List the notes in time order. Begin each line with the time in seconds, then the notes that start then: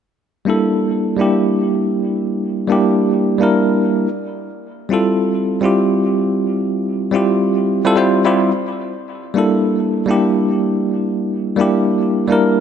0.45 G3 A#3 D4 E4
0.50 A4
1.17 G3 A#3 D4 E4
1.21 G4
2.67 G3 A#3 D4 E4
2.72 G4
3.38 G3 A#3 D4 E4
3.43 A#4
4.89 G3 C4 E4 F4
4.93 A4
5.61 G3 C4 E4 F4
5.66 G4
7.12 G3 C4 E4 F4
7.16 G4
7.85 G3 C4 E4 F4 A4
7.96 G3 C4 E4 F4 C5
8.24 G3 C4 E4 F4 G4
9.34 G3 A#3 D4 E4
9.38 A4
10.06 G3 A#3 D4 E4
10.11 G4
11.56 G3 A#3 D4 E4
11.61 G4
12.28 G3 A#3 D4 E4
12.32 A#4